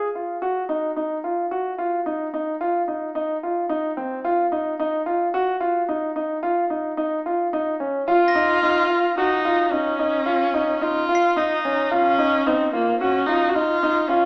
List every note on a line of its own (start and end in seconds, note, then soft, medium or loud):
0.15 0.35 F4 soft
0.42 0.62 F#4 medium
0.69 0.89 D#4 medium
0.96 1.17 D#4 medium
1.24 1.44 F4 medium
1.51 1.71 F#4 medium
1.78 1.99 F4 medium
2.06 2.26 D#4 medium
2.34 2.54 D#4 medium
2.61 2.81 F4 medium
2.88 3.08 D#4 medium
3.15 3.35 D#4 medium
3.43 3.63 F4 medium
3.69 3.90 D#4 medium
3.97 4.17 C4 medium
4.25 4.45 F4 medium
4.52 4.72 D#4 medium
4.80 5.00 D#4 medium
5.06 5.27 F4 medium
5.34 5.54 F#4 medium
5.60 5.81 F4 medium
5.89 6.09 D#4 medium
6.16 6.36 D#4 medium
6.43 6.63 F4 medium
6.70 6.91 D#4 medium
6.97 7.18 D#4 medium
7.26 7.46 F4 medium
7.53 7.73 D#4 medium
7.80 8.01 C#4 medium
8.08 8.28 F4 medium
8.08 9.14 F4 loud
8.28 9.62 A#6 soft
8.35 8.56 D#4 medium
8.63 8.83 D#4 medium
8.90 9.10 F4 medium
9.18 9.73 D#4 medium
9.18 9.38 F#4 medium
9.45 9.65 F4 medium
9.71 10.84 C#4 medium
9.71 9.92 D#4 medium
9.99 10.20 D#4 medium
10.26 10.47 F4 medium
10.54 10.74 D#4 medium
10.81 11.02 D#4 medium
10.81 11.39 F4 medium
11.09 11.29 F4 medium
11.15 12.48 C7 soft
11.36 11.57 D#4 medium
11.36 11.94 D#4 medium
11.65 11.85 C#4 medium
11.91 12.48 C#4 loud
11.91 12.12 F4 medium
12.19 12.39 D#4 medium
12.47 12.74 C4 medium
12.47 12.67 D#4 medium
12.73 12.99 A#3 medium
12.73 12.94 F4 medium
13.01 13.28 C#4 medium
13.01 13.21 F#4 medium
13.26 13.51 D#4 medium
13.26 13.48 F4 medium
13.49 13.56 F#4 medium
13.55 13.76 D#4 medium
13.55 14.09 F4 medium
13.83 14.03 D#4 medium
14.08 14.25 C#4 medium
14.08 14.25 F4 medium